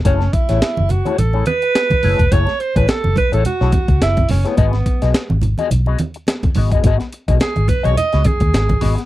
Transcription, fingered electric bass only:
X:1
M:4/4
L:1/16
Q:"Swing 16ths" 1/4=106
K:F#dor
V:1 name="Fingered electric bass" clef=bass
F,,,2 z A,,, z F,,,2 z A,,,2 z4 F,,, E,,, | F,,, z2 A,,, z F,,, z A,,, z B,,, z C,, F,,,2 F,,, z | G,,,2 z B,,, z G,,,2 z B,,,2 z4 G,,, F,,, | G,,, z2 B,,, z G,,, z B,,, z C,, z D,, G,,,2 G,,, z |]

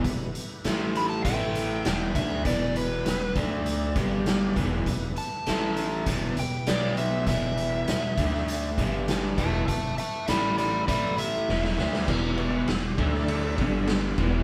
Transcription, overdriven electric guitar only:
X:1
M:4/4
L:1/8
Q:1/4=100
K:Em
V:1 name="Overdriven electric guitar" clef=bass
[E,,B,,] z [A,,E,A,]2 [A,,E,A,]2 [E,,B,,E,] [D,A,D] | [E,,B,,E,]2 [E,,B,,] [D,A,D]2 [G,,D,G,]2 [E,,B,,E,] | [E,,B,,] z [A,,E,A,]2 [E,,B,,E,] [E,,B,,] [B,,F,B,]2 | [E,,B,,E,]2 [E,,B,,] [D,A,D]2 [G,,D,G,]2 [E,,B,,E,] |
[E,,B,,] z [A,,E,A,]2 [A,,E,A,]2 [E,,B,,E,] [D,A,D] | [E,,B,,E,]2 [E,,B,,] [D,A,D]2 [G,,D,G,]2 [E,,B,,E,] |]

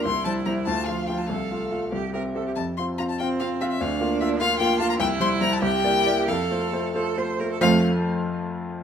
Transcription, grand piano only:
X:1
M:6/8
L:1/8
Q:3/8=95
K:F
V:1 name="Grand piano"
C,, [G,Ec] [G,Ec] D,, [F,Ff] [F,Ff] | C,, [A,Ff] [A,Ff] C,, [CGe] [CGe] | F,, [CFf] [CFf] [CFf] [CFf] [CFf] | D,, [B,Ff] [B,Ff] [B,Ff] [B,Ff] [B,Ff] |
C,, [G,Ec] [G,Ec] C,, [B,Ed] [B,Ed] | F,, [A,Fc] [A,Fc] [A,Fc] [A,Fc] [A,Fc] | [F,,F,A,Fcf] z4 z |]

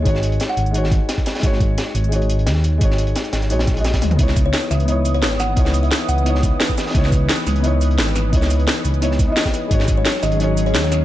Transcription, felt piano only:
X:1
M:4/4
L:1/16
Q:1/4=174
K:C#m
V:1 name="Felt piano"
[G,DFc]8 [G,DFc]8 | [G,DFc]8 [G,DFc]8 | [G,DFc]8 [G,DFc]3 [G,DFd]4- [G,DFd] | [B,DEc]8 [B,DEc]8 |
[B,DEc]8 [B,DEc]8 | [B,DEc]8 [B,DEc]8 | [B,DEc]8 [B,DEc]3 [B,DEd]4- [B,DEd] | [G,DFc]8 [G,DFc]8 |]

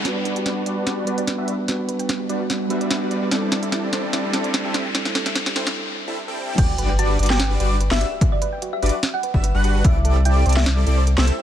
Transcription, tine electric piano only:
X:1
M:4/4
L:1/8
Q:1/4=147
K:G
V:1 name="Tine electric piano"
[G,B,DFB]4- [G,B,DFB] [G,B,DFB]3 | [G,B,DFB]4- [G,B,DFB] [G,B,DFB]3 | [G,CDEA]4- [G,CDEA] [G,CDEA]3 | [G,CDEA]4 z4 |
z8 | z8 | z8 |]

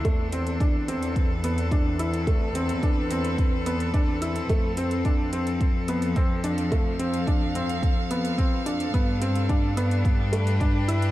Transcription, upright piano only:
X:1
M:4/4
L:1/8
Q:1/4=108
K:Am
V:1 name="Upright piano"
A, C D C2 B, D E | A, C D C2 B, D E | A, C D C2 B, C D | A, C D C2 B, C D |
B, C D B,2 A, D E |]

